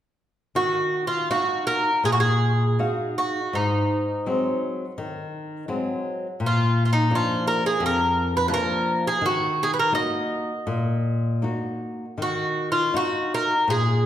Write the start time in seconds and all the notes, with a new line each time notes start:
0.55 D#3 F#4
1.07 F4
1.30 D#4 F#4 F5
1.67 A#4
2.04 A#2 G#4
2.12 F#4
2.20 G#4
2.79 D#4 F#4 F5
3.18 F#4
3.53 G#2 D#4
4.26 F#3 G#3 C4
4.98 D#3
5.68 F#3 G#3 C4
6.40 A#2
6.46 F4
6.85 F4
6.93 D#4
7.10 F3 A#3 D4
7.15 F4
7.47 A#4
7.66 G#4
7.80 F2
7.86 A#4
8.37 B4
8.48 F3 A#3 D4 B4
8.54 A#4
9.07 G#4
9.21 D#3
9.26 F#4
9.63 G#4
9.74 B4
9.79 A#4
9.92 A#3 D#4 F#4 D#5
10.67 A#2
11.42 A#3 D#4 F#4
12.18 D#3
12.22 F#4
12.72 F4
12.94 D#4 F#4 F5
13.34 A#4
13.68 A#2 G#4